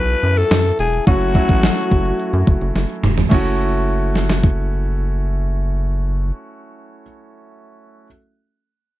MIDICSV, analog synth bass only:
0, 0, Header, 1, 2, 480
1, 0, Start_track
1, 0, Key_signature, 3, "minor"
1, 0, Tempo, 560748
1, 916, Time_signature, 4, 2, 24, 8
1, 7697, End_track
2, 0, Start_track
2, 0, Title_t, "Analog synth bass"
2, 0, Program_c, 0, 38
2, 0, Note_on_c, 0, 35, 95
2, 137, Note_off_c, 0, 35, 0
2, 198, Note_on_c, 0, 42, 96
2, 377, Note_off_c, 0, 42, 0
2, 437, Note_on_c, 0, 42, 91
2, 617, Note_off_c, 0, 42, 0
2, 677, Note_on_c, 0, 28, 89
2, 857, Note_off_c, 0, 28, 0
2, 917, Note_on_c, 0, 30, 111
2, 1186, Note_off_c, 0, 30, 0
2, 1276, Note_on_c, 0, 33, 88
2, 1456, Note_off_c, 0, 33, 0
2, 1639, Note_on_c, 0, 30, 89
2, 1818, Note_off_c, 0, 30, 0
2, 1997, Note_on_c, 0, 42, 105
2, 2087, Note_off_c, 0, 42, 0
2, 2117, Note_on_c, 0, 30, 95
2, 2207, Note_off_c, 0, 30, 0
2, 2236, Note_on_c, 0, 30, 92
2, 2326, Note_off_c, 0, 30, 0
2, 2354, Note_on_c, 0, 30, 100
2, 2445, Note_off_c, 0, 30, 0
2, 2596, Note_on_c, 0, 28, 102
2, 2776, Note_off_c, 0, 28, 0
2, 2838, Note_on_c, 0, 30, 93
2, 5407, Note_off_c, 0, 30, 0
2, 7697, End_track
0, 0, End_of_file